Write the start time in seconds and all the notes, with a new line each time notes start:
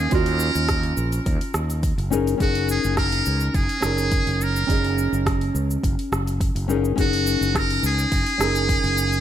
Already playing: G#4
0.09 D#2 C#4 F4, kick, open hi-hat, shaker
0.14 F#4 A#4 D#5
0.26 open hi-hat
0.40 shaker
0.55 D#2, open hi-hat, shaker
0.69 kick, cross-stick, open hi-hat, shaker
0.83 open hi-hat
0.97 A#1, shaker
1.12 open hi-hat, shaker
1.26 D#2, kick, open hi-hat, shaker
1.41 open hi-hat
1.54 D#2, cross-stick, shaker
1.70 open hi-hat, shaker
1.83 kick, open hi-hat, shaker
1.98 F#1, open hi-hat
2.10 C#4 D#4 G#4 A#4, shaker
2.27 open hi-hat, shaker
2.38 F#1 C#4 D#4 G#4, kick, open hi-hat, shaker
2.42 F#4 A#4
2.55 open hi-hat
2.69 G#4, shaker
2.84 F#1, shaker
2.97 A#4, kick, cross-stick, open hi-hat, shaker
3.12 open hi-hat
3.26 C#2, shaker
3.40 shaker
3.49 A#4
3.54 F#1 G#4, kick, open hi-hat, shaker
3.69 open hi-hat
3.81 F#1 C#4 D#4 G#4, cross-stick, shaker
3.86 A#4
3.98 open hi-hat, shaker
4.12 kick, open hi-hat, shaker
4.27 F#1, open hi-hat
4.41 A#4, shaker
4.56 shaker
4.67 F#1 C#4 D#4 G#4, kick, open hi-hat, shaker
4.71 D#5
4.85 open hi-hat
4.98 shaker
5.13 F#1, shaker
5.26 kick, cross-stick, open hi-hat, shaker
5.41 open hi-hat
5.55 C#2, shaker
5.71 shaker
5.83 F#1, kick, open hi-hat, shaker
5.99 open hi-hat
6.12 F#1, cross-stick, shaker
6.27 open hi-hat, shaker
6.41 kick, open hi-hat, shaker
6.55 F#1, open hi-hat
6.68 C#4 D#4 G#4 A#4, shaker
6.85 shaker
6.96 F#1 C#4 D#4 G#4, kick, open hi-hat, shaker
7.00 F#4 A#4
7.13 open hi-hat
7.27 shaker
7.41 F#1, shaker
7.55 A#4, kick, cross-stick, open hi-hat, shaker
7.71 open hi-hat
7.83 C#2 G#4, shaker
7.98 shaker
8.12 F#1, kick, open hi-hat, shaker
8.27 open hi-hat
8.38 F#1 C#4 D#4 G#4, cross-stick, shaker
8.43 A#4
8.55 open hi-hat, shaker
8.69 kick, open hi-hat, shaker
8.84 F#1, open hi-hat
8.98 shaker
9.13 shaker